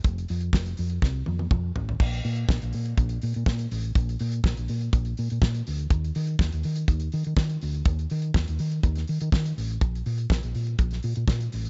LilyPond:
<<
  \new Staff \with { instrumentName = "Fingered electric bass" } { \clef bass \time 4/4 \key f \minor \tempo 4 = 123 f,,8 f,8 f,,8 f,8 c,8 f,8 f,8 a,,8 | \key bes \major bes,,8 bes,8 bes,,16 bes,,16 bes,8 bes,,8 bes,16 bes,16 bes,8 a,,8 | bes,,8 bes,8 bes,,16 bes,,16 bes,8 bes,,8 bes,16 bes,16 bes,8 d,8 | ees,8 ees8 ees,16 ees,16 ees8 ees,8 ees16 ees16 ees8 d,8 |
ees,8 ees8 ees,16 ees,16 ees8 ees,8 ees16 ees16 ees8 a,,8 | bes,,8 bes,8 bes,,16 bes,,16 bes,8 bes,,8 bes,16 bes,16 bes,8 a,,8 | }
  \new DrumStaff \with { instrumentName = "Drums" } \drummode { \time 4/4 <hh bd>16 hh16 hho16 hh16 <bd sn>16 hh16 hho16 hh16 <bd sn>8 tommh16 tommh16 <bd toml>8 tomfh16 tomfh16 | <cymc bd>16 hh16 hho16 hh16 <bd sn>16 hh16 hho16 hh16 <hh bd>16 hh16 hho16 hh16 <bd sn>16 hh16 hho16 hh16 | <hh bd>16 hh16 hho16 hh16 <bd sn>16 hh16 hho16 hh16 <hh bd>16 hh16 hho16 hh16 <bd sn>16 hh16 hho16 hh16 | <hh bd>16 hh16 hho16 hh16 <bd sn>16 hh16 hho16 hh16 <hh bd>16 hh16 hho16 hh16 <bd sn>16 hh16 hho16 hh16 |
<hh bd>16 hh16 hho16 hh16 <bd sn>16 hh16 hho16 hh16 <hh bd>16 <hh sn>16 hho16 hh16 <bd sn>16 hh16 hho16 hh16 | <hh bd>16 hh16 hho16 hh16 <bd sn>16 hh16 hho16 hh16 <hh bd>16 <hh sn>16 hho16 hh16 <bd sn>16 hh16 hho16 hh16 | }
>>